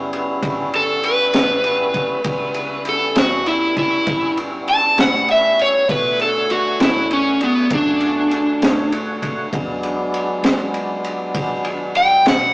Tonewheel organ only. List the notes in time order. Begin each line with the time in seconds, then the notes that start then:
Already playing: G3 B3 C#4 E4
2.24 G3 B3 C#4 E4
5.87 D3 A3 F#4 C#5
9.53 F#3 G#3 B3 D4